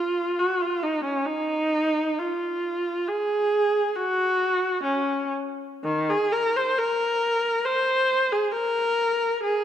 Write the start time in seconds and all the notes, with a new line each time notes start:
Already playing: F4
0.39 F#4
0.61 F4
0.83 D#4
1.04 C#4
1.26 D#4
2.19 F4
3.09 G#4
3.95 F#4
4.83 C#4
5.84 D#3
6.10 G#4
6.32 A#4
6.57 C5
6.78 A#4
7.65 C5
8.32 G#4
8.52 A#4
9.43 G#4